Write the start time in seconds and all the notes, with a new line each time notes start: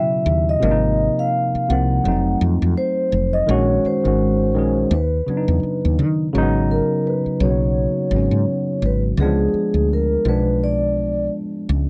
Already playing: B2 C#3 F#3 B3 E4 E5
0.26 D#2
0.49 D#5
0.60 G#1 C3 F3 A#3
0.64 D4
0.71 D#4
1.19 F5
1.55 muted fretless electric bass stroke
1.68 C2 C3 F3 A#3 F#5
1.72 C4
2.04 F1 F#3 A3 C4
2.08 D#4
2.41 F2
2.62 F2
2.77 C5
3.12 F1
3.33 D#5
3.47 A#1 D#3 G#3 C#4 C#5
3.51 F#4
3.85 C5, muted fretless electric bass stroke
4.03 G#1 D#3 G#3 C#4
4.08 F#4
4.55 A#1 D#3 G#3 C#4
4.59 G#4
4.91 D#2 B4
5.26 C#3 F#3 B3, muted fretless electric bass stroke
5.31 D4
5.37 D#4
5.48 E2
5.63 muted fretless electric bass stroke
5.85 D#2
5.99 D#3
6.33 G#1 C#3 F#3 A#3
6.38 D#4
6.42 B3
6.71 A#4
7.07 B4
7.26 muted fretless electric bass stroke
7.40 B1 C#3 F#3 A#3 C#5
7.45 F#4
7.50 B3
8.11 G#1 C#3 F#3
8.15 B3 C#4
8.31 G#2
8.82 G#1 B4
9.17 C#2 D3 G#3 B3 G#4
9.22 F3 D4
9.54 muted fretless electric bass stroke
9.74 D2
9.93 A#4
10.25 B1 F3 G#3 B3 B4
10.29 D4
10.64 D5
11.69 C#2